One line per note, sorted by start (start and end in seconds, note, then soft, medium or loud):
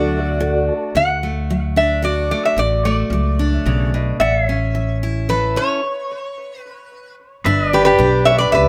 0.00 0.69 D2 loud
0.00 0.36 F#3 medium
0.00 1.22 A3 medium
0.00 0.93 D4 medium
0.00 0.20 F#4 medium
0.00 2.02 F#4 medium
0.00 0.20 A4 medium
0.00 0.40 A4 medium
0.00 0.20 D5 medium
0.00 0.40 D5 medium
0.00 0.94 D5 medium
0.00 0.94 F#5 medium
0.14 0.39 E5 medium
0.40 0.89 A2 medium
0.40 0.73 F#4 medium
0.40 0.74 A4 medium
0.40 0.74 D5 medium
0.40 0.66 F#5 medium
0.69 0.94 A5 medium
0.95 2.31 D2 medium
0.95 1.44 D3 medium
0.95 1.77 F#5 medium
1.23 2.31 A3 medium
1.50 1.99 F#3 medium
1.76 2.54 D4 medium
1.76 2.02 E5 medium
2.02 2.52 F#3 medium
2.02 4.20 F#4 medium
2.02 2.30 D5 medium
2.31 2.85 A3 medium
2.31 2.43 D5 medium
2.45 2.58 E5 medium
2.57 3.02 A1 medium
2.57 3.06 D3 medium
2.57 2.84 D5 medium
2.85 4.47 A3 medium
2.85 3.54 D5 medium
3.10 3.57 C#2 medium
3.10 3.61 F#3 medium
3.39 4.17 D4 medium
3.54 3.89 C#5 medium
3.66 4.12 B1 medium
3.66 3.93 C#3 medium
3.94 4.20 B2 medium
4.20 5.56 A1 medium
4.20 4.69 A2 medium
4.20 4.41 D5 medium
4.20 4.97 E5 medium
4.20 4.47 F#5 medium
4.41 5.81 C#5 medium
4.47 5.55 C#4 medium
4.47 5.81 E5 medium
4.75 5.23 E3 medium
5.03 5.80 E4 medium
5.29 5.77 E3 medium
5.29 5.80 A4 medium
5.29 5.57 B4 medium
5.56 5.80 C#4 medium
5.56 6.61 C#5 loud
6.61 7.14 B4 loud
7.45 7.90 G1 medium
7.45 7.94 G2 medium
7.45 7.99 D4 medium
7.45 8.68 B4 medium
7.45 7.71 E5 medium
7.71 8.68 G4 medium
7.71 7.85 G4 medium
7.71 7.84 B4 medium
7.71 8.68 D5 medium
7.85 8.23 G4 medium
7.85 8.23 B4 loud
7.98 8.44 B1 medium
7.98 8.47 G3 medium
7.98 8.68 D4 medium
7.98 8.32 G4 medium
7.98 8.32 B4 medium
7.98 8.32 D5 medium
8.25 8.39 C#5 medium
8.25 8.38 E5 loud
8.38 8.52 B4 medium
8.38 8.52 D5 loud
8.52 8.68 C#2 medium
8.52 8.68 G4 medium
8.52 8.68 B4 medium
8.52 8.68 D5 medium
8.52 8.68 E5 loud